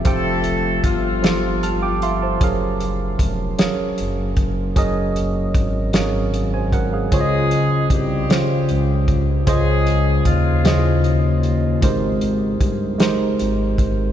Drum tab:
HH |xxxxxx|xxxxxx|xxxxxx|xxxxxx|
SD |---o--|---o--|---o--|---o--|
BD |o-o---|o-o--o|o-o--o|o-o--o|

HH |xxxxxx|xxxxxx|
SD |---o--|---o--|
BD |o-o---|o-o--o|